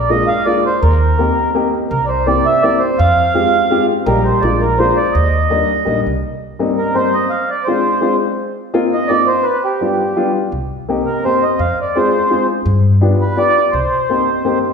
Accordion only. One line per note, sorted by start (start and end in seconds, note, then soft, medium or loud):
0.10 0.29 D#5 loud
0.27 0.46 F5 loud
0.46 0.64 D5 loud
0.66 0.83 C5 medium
0.81 1.51 A#4 medium
1.90 2.05 A#4 medium
2.05 2.27 C5 medium
2.05 2.10 D5 soft
2.26 2.47 D5 medium
2.46 2.64 E5 loud
2.62 2.83 D5 loud
2.79 2.99 C5 medium
2.98 3.86 F5 loud
4.06 4.26 A#4 medium
4.24 4.43 C5 medium
4.41 4.62 D5 medium
4.60 4.79 A#4 medium
4.78 4.98 C5 medium
4.96 5.15 D5 medium
5.12 6.01 D#5 medium
6.78 6.96 A#4 medium
6.95 7.15 C5 loud
7.14 7.32 D#5 medium
7.30 7.50 F5 medium
7.50 7.68 D5 medium
7.65 8.16 C5 medium
8.93 9.11 D#5 medium
9.08 9.28 D5 loud
9.27 9.45 C5 medium
9.43 9.64 B4 medium
9.64 10.32 G4 medium
11.05 11.24 A#4 medium
11.24 11.44 C5 medium
11.43 11.61 D#5 medium
11.59 11.79 F5 medium
11.81 11.98 D5 medium
11.96 12.46 C5 medium
13.21 13.39 B4 medium
13.38 13.75 D5 loud
13.71 14.59 C5 medium